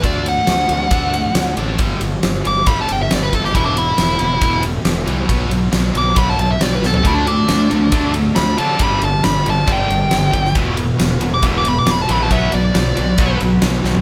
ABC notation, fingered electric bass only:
X:1
M:4/4
L:1/8
Q:1/4=137
K:Em
V:1 name="Fingered electric bass" clef=bass
D,,2 D,, D,, D,,2 D,, A,,, | G,,, G,,, G,,, G,,, G,,, G,,, G,,, G,,, | E,,,2 E,,, E,,, E,,,2 E,,, C,, | B,,, B,,, B,,, B,,, B,,, B,,, B,,, B,,, |
D,,2 D,, D,, D,,2 D,, D, | G,,, G,,, G,,, G,,, G,,, G,,, G,,, G,,, | E,,,2 E,,, E,,, E,,,2 E,,, ^A,,, | B,,, B,,, B,,, B,,, B,,, B,,, B,,, B,,, |]